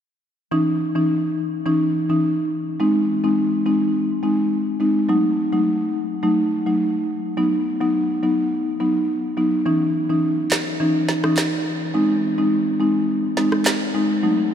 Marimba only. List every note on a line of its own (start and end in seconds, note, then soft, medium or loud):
0.51 0.67 E3 medium
0.51 0.68 C#4 medium
0.51 0.68 D#4 loud
0.95 1.10 E3 medium
0.95 1.10 C#4 medium
0.95 1.10 D#4 medium
1.66 2.06 E3 medium
1.66 2.06 C#4 medium
1.66 2.06 D#4 medium
2.09 2.24 E3 medium
2.09 2.24 C#4 medium
2.09 2.24 D#4 medium
2.80 3.20 G#3 medium
2.80 3.20 C4 medium
2.80 3.20 D#4 medium
3.24 3.63 G#3 medium
3.24 3.63 C4 medium
3.24 3.63 D#4 medium
3.66 3.92 G#3 medium
3.66 3.92 C4 medium
3.66 3.93 D#4 medium
4.23 4.39 G#3 medium
4.23 4.39 C4 medium
4.23 4.39 D#4 medium
4.80 4.96 G#3 medium
4.80 4.96 C4 medium
4.80 4.96 D#4 medium
5.09 5.25 F#3 medium
5.09 5.25 A3 medium
5.09 5.25 D#4 medium
5.52 5.67 F#3 medium
5.52 5.67 A3 medium
5.52 5.67 D#4 medium
6.23 6.63 F#3 medium
6.23 6.63 A3 medium
6.23 6.63 D#4 loud
6.66 6.81 F#3 medium
6.66 6.81 A3 medium
6.66 6.81 D#4 medium
7.37 7.77 F#3 medium
7.37 7.77 B3 medium
7.37 7.78 D#4 medium
7.81 8.20 F#3 medium
7.81 8.20 B3 medium
7.81 8.20 D#4 medium
8.23 8.49 F#3 medium
8.23 8.49 B3 medium
8.23 8.50 D#4 medium
8.80 8.96 F#3 medium
8.80 8.96 B3 medium
8.80 8.96 D#4 medium
9.37 9.53 F#3 medium
9.37 9.53 B3 medium
9.37 9.53 D#4 medium
9.66 9.82 E3 medium
9.66 9.82 C#4 medium
9.66 9.82 D#4 medium
10.09 10.24 E3 medium
10.09 10.24 C#4 medium
10.09 10.24 D#4 medium
10.80 11.20 E3 medium
10.80 11.20 C#4 medium
10.80 11.20 D#4 medium
11.24 11.38 E3 medium
11.24 11.38 C#4 medium
11.24 11.38 D#4 medium
11.94 12.34 G#3 medium
11.94 12.35 C4 medium
11.94 12.35 D#4 loud
12.38 12.77 G#3 medium
12.38 12.77 C4 medium
12.38 12.77 D#4 medium
12.80 13.06 G#3 medium
12.80 13.07 C4 medium
12.80 13.07 D#4 medium
13.37 13.53 G#3 medium
13.37 13.53 C4 medium
13.37 13.53 D#4 medium
13.94 14.10 G#3 medium
13.94 14.10 C4 medium
13.94 14.11 D#4 medium
14.23 14.39 F#3 medium
14.23 14.39 A3 medium
14.23 14.39 D#4 loud